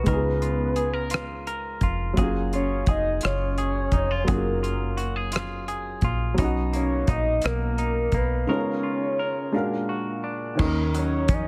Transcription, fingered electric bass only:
0.07 1.78 C#2 loud
1.82 2.13 F1 medium
2.18 2.84 F#1 medium
2.88 3.19 F1 medium
3.24 3.89 F#1 medium
3.93 4.24 F1 medium
4.29 6.00 F#1 medium
6.03 6.34 A#1 medium
6.39 7.05 B1 medium
7.09 7.40 A#1 medium
7.45 8.10 B1 medium
8.13 8.45 B1 medium
10.60 11.29 D#2 loud
11.29 11.48 F2 loud

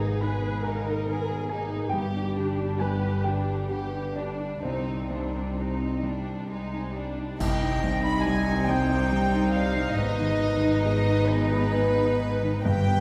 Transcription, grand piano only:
0.00 1.88 G#2 medium
0.00 0.13 D#3 soft
0.00 0.42 B3 soft
0.00 0.17 G#5 medium
0.21 0.56 D#4 soft
0.21 0.61 B5 medium
0.42 0.77 B3 soft
0.64 0.99 D#3 soft
0.64 1.45 A#5 medium
0.87 1.21 D#4 soft
1.09 1.42 D#3 soft
1.30 1.63 B3 soft
1.49 1.84 A#4 soft
1.49 1.89 G#5 medium
1.72 1.93 B3 soft
1.89 4.61 G2 soft
1.89 2.74 G5 medium
2.15 2.49 D4 soft
2.38 2.72 D3 soft
2.59 2.94 D4 soft
2.79 3.16 G3 soft
2.79 3.21 G#5 medium
3.03 3.39 D4 soft
3.24 3.62 D3 soft
3.24 4.13 G5 medium
3.48 3.85 G4 soft
3.71 4.08 D3 soft
3.93 4.31 D4 soft
4.16 4.55 B4 soft
4.16 4.60 D5 medium
4.40 4.64 D4 soft
4.63 7.37 C2 soft
4.63 5.99 C5 medium
4.88 5.25 D#4 soft
5.10 5.48 G2 soft
5.34 5.71 D#4 soft
5.57 5.94 G4 soft
5.80 6.17 D#4 soft
6.03 6.40 G2 soft
6.26 6.63 G4 soft
6.72 7.09 D#4 soft
6.94 7.31 D5 soft
7.18 7.40 D#4 soft
7.40 9.94 C2 medium
7.61 7.96 D#4 soft
7.84 8.18 G2 soft
8.04 8.39 D#4 soft
8.26 8.60 G3 soft
8.47 8.81 D#4 soft
8.69 9.03 G2 soft
8.90 9.25 G4 soft
9.12 9.46 G2 soft
9.34 9.68 D#4 soft
9.56 9.90 D5 medium
9.77 9.98 D#4 medium
9.98 12.61 G#2 medium
10.19 10.54 D#4 soft
10.41 10.76 D#3 soft
10.63 10.98 D#4 soft
10.86 11.20 G#4 soft
11.07 11.41 D#4 soft
11.28 11.64 D#3 soft
11.51 11.87 G#4 medium
11.73 12.10 D#3 medium
11.96 12.33 D#4 soft
12.20 12.56 B4 medium
12.43 12.65 D#4 medium
12.66 13.00 G2 medium
12.88 13.00 B3 medium

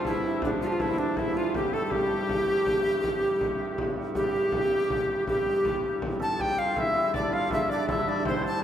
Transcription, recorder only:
0.07 0.41 E4 loud
0.44 0.50 D4 medium
0.62 0.68 F4 medium
0.67 0.74 G4 medium
0.72 0.83 F4 medium
0.82 1.00 E4 loud
0.98 1.20 D4 medium
1.19 1.38 E4 medium
1.37 1.55 F4 medium
1.56 1.73 G4 medium
1.75 1.85 A4 medium
1.86 1.93 A4 medium
1.91 3.91 G4 loud
4.16 5.24 G4 loud
5.28 5.99 G4 loud
6.22 6.43 A5 medium
6.41 6.60 G5 loud
6.58 6.80 F5 loud
6.78 7.15 E5 loud
7.15 7.35 D5 loud
7.33 7.52 F5 medium
7.53 7.69 E5 loud
7.71 7.88 D5 loud
7.90 8.10 E5 loud
8.09 8.26 D5 medium
8.28 8.44 C5 medium
8.47 8.63 A5 loud

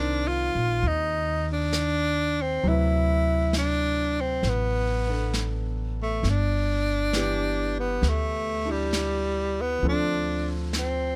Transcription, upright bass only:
0.00 0.50 C2 medium
0.55 0.81 A#1 medium
0.83 2.60 D#2 medium
2.63 4.40 D2 medium
4.43 6.19 A1 medium
6.23 7.98 G1 medium
8.02 9.78 D2 medium
9.82 11.16 D2 medium

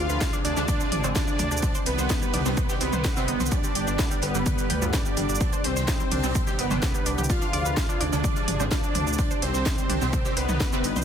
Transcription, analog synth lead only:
0.00 0.36 F4 loud
0.45 1.06 D4 loud
1.16 1.77 D4 loud
1.87 2.72 B3 loud
2.81 3.53 B3 loud
3.52 4.24 D4 loud
4.23 4.95 B3 loud
4.94 5.66 D4 loud
5.64 6.50 C4 loud
6.59 7.21 B3 loud
7.30 8.02 F4 loud
8.01 8.62 D4 loud
8.72 9.44 D4 loud
9.42 10.38 C4 loud
10.37 10.99 B3 loud

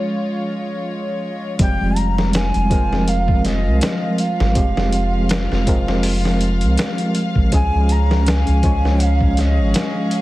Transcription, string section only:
0.00 1.55 G#3 medium
0.00 1.55 F4 medium
0.00 1.55 C#5 medium
1.60 7.49 F3 medium
1.60 4.53 F4 medium
1.60 10.22 F5 medium
4.56 7.49 F4 medium
7.52 10.22 C#4 medium
7.52 10.22 G#4 medium

